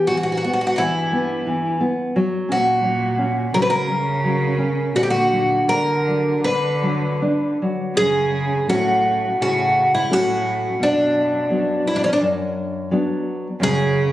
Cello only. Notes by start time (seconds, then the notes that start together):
0.73 A#2
0.79 G2
2.50 A#2
3.52 C#3
3.61 D3
3.67 C#3
4.95 B2
5.03 B2
5.07 A#2
5.66 D3
6.41 D3
7.95 C#3
8.69 A2
9.39 A2
9.92 G#2
10.10 A2
10.81 F#2
11.85 G#2
11.92 F#2
12.03 E2
12.13 F#2
13.60 C#3